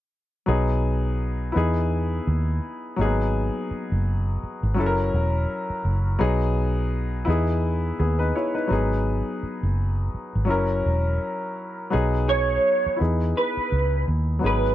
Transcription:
0.46 1.51 B1 medium
0.46 1.54 F#3 medium
0.46 1.53 B3 medium
0.46 1.54 D#4 medium
0.46 1.55 G#4 medium
1.52 2.19 E2 medium
1.52 2.95 B3 medium
1.52 2.95 D#4 medium
1.52 2.94 E4 medium
1.57 2.96 G#4 medium
2.27 2.59 D#2 medium
2.96 3.49 G#1 medium
2.96 4.72 F#3 medium
2.96 3.06 A#3 soft
2.96 4.74 D#4 medium
3.01 4.76 B3 medium
3.01 4.75 G#4 medium
3.71 muted fingered electric bass stroke soft
3.92 4.36 F#1 medium
4.43 muted fingered electric bass stroke soft
4.63 4.78 G#1 medium
4.74 5.09 F#1 medium
4.74 6.16 F#3 medium
4.74 6.17 C#4 medium
4.74 6.18 E4 medium
4.80 4.86 A4 medium
4.86 6.22 A#4 medium
5.14 5.45 E1 medium
5.70 muted fingered electric bass stroke soft
5.85 6.16 F#1 medium
6.19 7.24 B1 loud
6.19 7.27 F#3 medium
6.19 7.24 B3 medium
6.19 7.26 D#4 medium
6.19 7.28 G#4 medium
7.25 7.91 E2 medium
7.25 7.97 B3 medium
7.25 7.98 D#4 medium
7.25 8.34 E4 medium
7.30 7.98 G#4 medium
8.00 8.31 D#2 medium
8.00 8.19 B3 soft
8.00 8.19 G#4 medium
8.19 8.34 D#4 soft
8.19 8.33 B4 medium
8.35 8.55 E4 medium
8.35 8.55 C#5 medium
8.55 8.69 D#4 soft
8.55 8.89 B4 medium
8.67 9.21 G#1 medium
8.67 10.43 F#3 medium
8.67 10.45 B3 medium
8.67 10.46 D#4 medium
8.72 10.47 G#4 medium
9.43 muted fingered electric bass stroke soft
9.63 10.08 F#1 medium
10.14 muted fingered electric bass stroke soft
10.35 10.50 G#1 medium
10.45 11.87 F#3 medium
10.45 11.88 C#4 medium
10.45 11.89 E4 medium
10.50 10.81 F#1 medium
10.50 11.90 A#4 medium
10.86 11.17 E1 medium
11.90 12.57 B1 medium
11.90 12.99 F#3 medium
11.90 12.97 B3 medium
11.90 12.99 D#4 medium
11.90 13.00 G#4 medium
12.29 12.96 C#5 loud
12.86 muted fingered electric bass stroke soft
12.96 14.39 B3 soft
12.96 14.40 D#4 soft
12.96 14.38 E4 soft
13.01 13.32 E2 medium
13.01 14.41 G#4 medium
13.37 14.04 B4 medium
13.57 muted fingered electric bass stroke soft
13.72 14.04 C#2 medium
14.08 14.39 D#2 medium
14.39 14.75 F#3 medium
14.39 14.75 B3 soft
14.39 14.75 D#4 soft
14.44 14.75 G#1 medium
14.44 14.75 G#4 medium
14.44 14.75 B4 medium

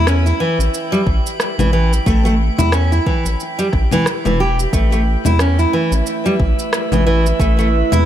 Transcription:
0.00 0.33 E2 medium
0.00 4.71 E4 medium
0.00 4.77 G5 medium
0.07 0.25 C#4 medium
0.07 cross-stick medium
0.07 shaker medium
0.26 0.39 E4 medium
0.26 shaker soft
0.40 0.58 E3 medium
0.59 0.69 A1 medium
0.59 shaker medium
0.74 shaker medium
0.92 1.00 G3 medium
0.92 shaker soft
1.06 1.20 A1 loud
1.06 kick medium
1.27 shaker medium
1.40 cross-stick medium
1.40 shaker soft
1.58 1.99 A1 medium
1.58 1.72 E3 medium
1.58 low conga medium
1.58 shaker soft
1.73 1.91 E3 medium
1.93 shaker medium
2.06 2.50 A1 medium
2.06 2.24 A3 medium
2.06 kick loud
2.06 shaker soft
2.25 2.33 A3 loud
2.25 shaker soft
2.59 3.00 E2 medium
2.59 2.72 E4 medium
2.59 low conga medium
2.59 shaker medium
2.72 2.91 C#4 medium
2.72 cross-stick medium
2.72 shaker soft
2.92 3.06 E4 medium
2.92 shaker soft
3.06 3.25 E3 medium
3.06 kick medium
3.25 3.35 A1 medium
3.25 shaker medium
3.40 shaker soft
3.59 3.67 G3 medium
3.59 shaker soft
3.73 3.86 A1 loud
3.73 kick loud
3.73 cross-stick soft
3.91 4.05 E3 medium
3.91 low conga medium
3.91 shaker medium
4.06 cross-stick medium
4.06 shaker soft
4.25 4.66 E1 medium
4.25 4.39 E3 medium
4.25 low conga medium
4.25 shaker soft
4.40 4.58 G4 medium
4.59 shaker medium
4.72 5.16 A1 medium
4.72 8.05 A3 medium
4.72 4.91 A3 loud
4.72 8.05 E4 medium
4.72 8.05 E5 medium
4.72 kick loud
4.72 shaker medium
4.92 5.00 A3 medium
4.92 shaker soft
4.98 8.05 E5 medium
5.02 8.05 E4 medium
5.25 5.66 E2 medium
5.25 5.38 E4 medium
5.25 low conga medium
5.25 shaker medium
5.36 5.58 C#4 medium
5.36 8.05 B4 medium
5.36 cross-stick loud
5.40 shaker medium
5.59 5.73 E4 medium
5.59 shaker soft
5.73 5.91 E3 medium
5.92 6.02 A1 medium
5.92 shaker medium
6.07 shaker medium
6.26 6.34 G3 medium
6.26 shaker soft
6.40 6.53 A1 loud
6.40 kick loud
6.59 shaker medium
6.73 cross-stick medium
6.73 shaker medium
6.92 7.33 A1 medium
6.92 7.05 E3 medium
6.92 low conga medium
6.92 shaker soft
7.07 7.25 E3 medium
7.26 shaker medium
7.40 7.83 A1 medium
7.40 7.57 A3 medium
7.40 kick loud
7.40 shaker medium
7.59 7.67 A3 loud
7.59 shaker soft
7.92 8.05 E2 medium
7.92 8.05 E4 loud
7.92 low conga medium
7.92 shaker medium

